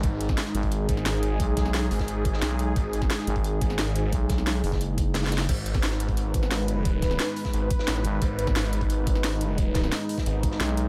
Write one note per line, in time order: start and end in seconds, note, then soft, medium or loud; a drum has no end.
0.00 0.36 G#1 loud
0.00 5.45 G#3 medium
0.00 5.45 D#4 medium
0.00 5.47 G#4 loud
0.00 kick loud
0.00 closed hi-hat medium
0.21 closed hi-hat medium
0.29 kick loud
0.29 snare soft
0.37 snare loud
0.37 closed hi-hat medium
0.46 snare medium
0.55 0.87 G#1 loud
0.55 closed hi-hat medium
0.63 kick medium
0.63 closed hi-hat soft
0.71 closed hi-hat medium
0.89 1.38 G#1 loud
0.89 kick loud
0.89 closed hi-hat medium
0.97 snare soft
1.06 snare loud
1.06 closed hi-hat medium
1.23 closed hi-hat medium
1.40 1.90 B1 loud
1.40 kick loud
1.40 closed hi-hat medium
1.57 kick loud
1.57 snare soft
1.57 closed hi-hat medium
1.65 snare soft
1.74 snare loud
1.74 closed hi-hat medium
1.91 2.41 G#1 medium
1.91 closed hi-hat medium
1.91 open hi-hat medium
1.99 kick medium
1.99 snare medium
2.08 closed hi-hat medium
2.25 kick loud
2.25 closed hi-hat medium
2.34 snare medium
2.41 2.75 B1 loud
2.41 snare loud
2.41 closed hi-hat medium
2.51 snare soft
2.59 closed hi-hat medium
2.76 3.09 G#1 loud
2.76 kick loud
2.76 closed hi-hat medium
2.93 closed hi-hat medium
3.02 kick loud
3.02 snare soft
3.10 snare loud
3.10 closed hi-hat loud
3.10 closed hi-hat medium
3.19 snare medium
3.27 3.60 G#1 loud
3.27 closed hi-hat medium
3.36 kick medium
3.36 closed hi-hat soft
3.44 closed hi-hat medium
3.61 4.11 G#1 loud
3.61 kick loud
3.61 closed hi-hat loud
3.61 closed hi-hat medium
3.70 snare soft
3.78 snare loud
3.78 closed hi-hat medium
3.96 closed hi-hat medium
4.12 4.62 B1 loud
4.12 kick loud
4.12 closed hi-hat medium
4.29 kick loud
4.29 snare soft
4.29 closed hi-hat medium
4.29 closed hi-hat loud
4.38 snare medium
4.47 snare loud
4.47 closed hi-hat loud
4.47 closed hi-hat medium
4.64 5.48 F#1 loud
4.64 closed hi-hat medium
4.64 open hi-hat medium
4.72 kick medium
4.72 snare medium
4.81 closed hi-hat medium
4.98 kick loud
4.98 closed hi-hat loud
4.98 closed hi-hat medium
5.14 snare loud
5.14 snare medium
5.14 closed hi-hat medium
5.23 snare loud
5.23 closed hi-hat medium
5.26 snare medium
5.32 snare loud
5.32 closed hi-hat loud
5.32 closed hi-hat medium
5.38 snare loud
5.40 snare loud
5.40 closed hi-hat medium
5.49 5.82 G#1 loud
5.49 10.88 G#3 medium
5.49 10.88 D#4 medium
5.49 10.88 B4 loud
5.49 kick loud
5.49 closed hi-hat loud
5.49 closed hi-hat medium
5.49 crash loud
5.66 closed hi-hat medium
5.66 closed hi-hat loud
5.75 kick loud
5.75 snare medium
5.83 7.18 G#1 loud
5.83 snare loud
5.83 closed hi-hat medium
5.91 snare medium
6.00 closed hi-hat loud
6.00 closed hi-hat medium
6.09 kick medium
6.09 closed hi-hat soft
6.17 closed hi-hat medium
6.34 kick loud
6.34 closed hi-hat loud
6.34 closed hi-hat medium
6.43 snare soft
6.51 snare loud
6.51 closed hi-hat medium
6.68 closed hi-hat medium
6.85 kick loud
6.85 closed hi-hat medium
7.02 kick loud
7.02 snare soft
7.02 closed hi-hat medium
7.11 snare medium
7.19 snare loud
7.19 closed hi-hat medium
7.36 closed hi-hat medium
7.36 open hi-hat medium
7.45 kick medium
7.45 snare medium
7.53 7.69 G#1 loud
7.53 closed hi-hat medium
7.70 kick loud
7.70 closed hi-hat medium
7.70 closed hi-hat loud
7.79 snare medium
7.88 8.03 A1 loud
7.88 snare loud
7.88 closed hi-hat medium
7.96 snare soft
8.04 8.20 G#1 medium
8.04 closed hi-hat medium
8.04 closed hi-hat loud
8.22 8.54 G#1 loud
8.22 kick loud
8.22 closed hi-hat medium
8.22 closed hi-hat loud
8.39 closed hi-hat medium
8.47 kick loud
8.47 snare medium
8.56 9.91 G#1 loud
8.56 snare loud
8.56 closed hi-hat medium
8.64 snare medium
8.73 closed hi-hat medium
8.81 kick medium
8.81 closed hi-hat soft
8.90 closed hi-hat medium
9.07 kick loud
9.07 closed hi-hat medium
9.15 snare soft
9.24 snare loud
9.24 closed hi-hat medium
9.41 closed hi-hat medium
9.58 kick loud
9.58 closed hi-hat medium
9.74 kick loud
9.74 snare soft
9.74 closed hi-hat medium
9.84 snare soft
9.92 snare loud
9.92 closed hi-hat medium
10.09 closed hi-hat medium
10.09 open hi-hat medium
10.18 kick medium
10.18 snare medium
10.26 10.59 G#1 loud
10.26 closed hi-hat medium
10.43 kick loud
10.43 closed hi-hat medium
10.52 snare medium
10.60 10.88 B1 medium
10.60 snare loud
10.60 closed hi-hat medium
10.69 snare soft
10.77 closed hi-hat medium